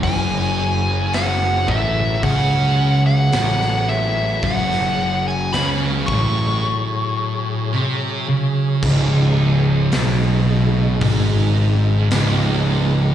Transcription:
<<
  \new Staff \with { instrumentName = "Lead electric guitar" } { \time 4/4 \key fis \dorian \tempo 4 = 55 gis''4 fis''8 e''8 fis''8. fis''8. e''8 | fis''8. gis''16 b''8 cis'''2 r8 | r1 | }
  \new Staff \with { instrumentName = "Tonewheel organ" } { \time 4/4 \key fis \dorian <fis gis' cis''>1~ | <fis gis' cis''>1 | <cis gis dis'>1 | }
  \new Staff \with { instrumentName = "Distorted electric guitar" } { \clef bass \time 4/4 \key fis \dorian fis,4. a,8 cis4 a,4 | fis,4 cis8 a,4. bis,8 cis8 | cis,4 b,4 gis,4 cis,4 | }
  \new Staff \with { instrumentName = "Distorted electric guitar" } { \clef bass \time 4/4 \key fis \dorian fis,4. a,8 cis4 a,4 | fis,4 cis8 a,4. bis,8 cis8 | cis,4 b,4 gis,4 cis,4 | }
  \new Staff \with { instrumentName = "Picked electric bass" } { \clef bass \time 4/4 \key fis \dorian fis,,4. a,,8 cis,4 a,,4 | fis,,4 cis,8 a,,8 r2 | cis,,4 b,,4 gis,,4 cis,,4 | }
  \new DrumStaff \with { instrumentName = "Drums" } \drummode { \time 4/4 <hho bd>4 <hho sn>8 bd8 <hho bd>4 <hho sn>16 sn8. | <hho bd>16 sn8. <hho sn>8 bd8 r4 r4 | <cymc bd>4 <hho sn>4 <hho bd>4 <hho sn>4 | }
>>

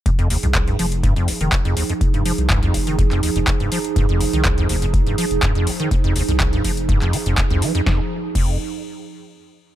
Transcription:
<<
  \new Staff \with { instrumentName = "Ambient pad" } { \time 4/4 \key f \minor \tempo 4 = 123 <f ees' aes'>1~ | <f ees' aes'>1~ | <f ees' aes'>1~ | <f ees' aes'>1 |
<f ees' aes'>8 r2. r8 | }
  \new Staff \with { instrumentName = "Acid bass" } { \clef bass \time 4/4 \key f \minor f,16 f,16 ees,16 f,16 r16 g,16 f16 r16 g,16 f,16 f,,16 ees16 f,16 f,16 ees,16 f,16 | r16 g,16 f16 r16 g,16 f,16 f,,16 ees16 f,16 f,16 ees,16 f,16 r16 g,16 f16 r16 | g,16 f,16 f,,16 ees16 f,16 f,16 ees,16 f,16 r16 g,16 f16 r16 g,16 f,16 f,,16 ees16 | f,16 f,16 ees,16 f,16 r16 g,16 f16 r16 g,16 f,16 aes16 f,16 f,16 f,16 f16 f,16 |
f,16 r8. f,8 r2 r8 | }
  \new Staff \with { instrumentName = "Sub bass" } { \clef bass \time 4/4 \key f \minor f,,8. c,8. f,,8. f,,16 r16 f,,16 r16 f,,16 r8 | f,,8. c,8. f,,8. f,,16 r16 f,,16 r16 f,,16 r8 | f,,8. c,8. f,,8. f,,16 r16 f,,16 r16 f,,16 r8 | f,,8. c,8. f,,8. f,,16 r16 f,,16 r16 c,16 r8 |
f,,16 r8. f,,8 r2 r8 | }
  \new DrumStaff \with { instrumentName = "Drums" } \drummode { \time 4/4 <hh bd>16 hh16 hho16 hh16 <hc hh bd>16 hh16 hho16 hh16 <hh bd>16 hh16 hho16 hh16 <hc hh bd>16 hh16 hho16 hh16 | <hh bd>16 hh16 hho16 hh16 <hc hh bd>16 hh16 <hho bd>16 hh16 <hh bd>16 <hc hh>16 hho16 hh16 <hc hh bd>16 hh16 hho16 hh16 | <hh bd>16 hh16 hho16 hh16 <hc hh bd>16 hh16 hho16 hh16 <hh bd>16 hh16 hho16 hh16 <hc hh bd>16 hh16 hho16 hh16 | <hh bd>16 hh16 hho16 hh16 <hc hh bd>16 hh16 <hho bd>16 hh16 <hh bd>16 <hc hh>16 hho16 hh16 <hc hh bd>16 hh16 hho16 hh16 |
<bd sn>4 <cymc bd>4 r4 r4 | }
>>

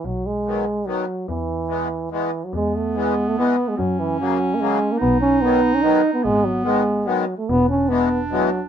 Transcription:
<<
  \new Staff \with { instrumentName = "Clarinet" } { \time 3/4 \key e \major \tempo 4 = 146 r2. | r2. | b2. | cis'2. |
dis'2. | b2~ b8 r8 | d'2. | }
  \new Staff \with { instrumentName = "Accordion" } { \clef bass \time 3/4 \key e \major r4 <dis fis b>8 r8 <dis fis b>8 r8 | r4 <e gis b>8 r8 <e gis b>8 r8 | r4 <e gis b>8 r8 <e gis b>8 r8 | r4 <cis fis ais>8 r8 <cis fis ais>8 r8 |
r4 <dis fis b>8 r8 <dis fis b>8 r8 | r4 <dis gis b>8 r8 <dis gis b>8 r8 | r4 <e gis b>8 r8 <e gis b>8 r8 | }
  \new Staff \with { instrumentName = "Euphonium" } { \clef bass \time 3/4 \key e \major fis8 gis4. fis4 | e2 e8. fis16 | gis8 a8 gis8. a16 b8. gis16 | fis8 e8 \tuplet 3/2 { fis4~ fis16 ais16 } gis8. ais16 |
b8 cis'8 b8. cis'16 dis'8. b16 | gis8 fis8 gis4 fis8. a16 | b8 cis'8 b8. r16 fis8. r16 | }
  \new Staff \with { instrumentName = "Double bass" } { \clef bass \time 3/4 \key e \major b,,2. | e,2. | e,2. | fis,2. |
b,,2. | gis,,2. | e,,2. | }
>>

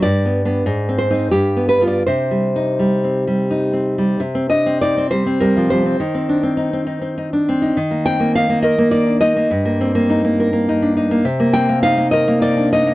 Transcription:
\new Staff \with { instrumentName = "Nylon-string guitar" } { \time 3/4 \key c \minor \tempo 4 = 102 << { d''4. c''8 g'8 b'16 d''16 | c''2~ c''8 r8 | r8 ees''8 d''8 c''8 bes'8 c''8~ | c''2. |
r8 g''8 f''8 ees''8 d''8 ees''8~ | ees''2. | \key c \dorian r8 g''8 f''8 ees''8 d''8 ees''8 | } \\ { \tuplet 3/2 { g,8 b8 <b d'>8 aes,8 c'8 <c' ees'>8 g,8 b8 <b f'>8 } | \tuplet 3/2 { c8 g8 ees'8 g8 c'8 g8 ees'8 c'8 g8 } | c16 c'16 d'16 c'16 ees'16 c'16 g16 c'16 g16 f16 g16 c'16 | ees16 c'16 d'16 c'16 ees'16 c'16 ees'16 c'16 ees'16 d'16 c'16 ees'16 |
ees16 bes16 c'16 bes16 ees'16 bes16 bes'16 bes16 ees'16 d'16 ees'16 bes16 | g,16 bes16 c'16 bes16 ees'16 bes16 bes'16 bes16 ees'16 d'16 ees'16 bes16 | c16 bes16 c'16 bes16 ees'16 bes16 bes'16 bes16 ees'16 d'16 ees'16 bes16 | } >> }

